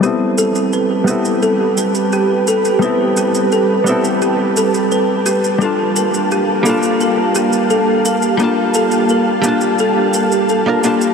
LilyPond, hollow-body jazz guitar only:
\new Staff \with { instrumentName = "Hollow-body jazz guitar" } { \time 4/4 \key g \dorian \tempo 4 = 86 <g b c' e' a'>4. <g b c' e' a'>2~ <g b c' e' a'>8 | <g b c' e' a'>4. <g b c' e' a'>2~ <g b c' e' a'>8 | <g bes d' f' a''>4. <g bes d' f' a''>2~ <g bes d' f' a''>8 | <g bes d' f' a''>4. <g bes d' f' a''>4.~ <g bes d' f' a''>16 <g bes d' f' bes'>16 <g bes d' f' a''>8 | }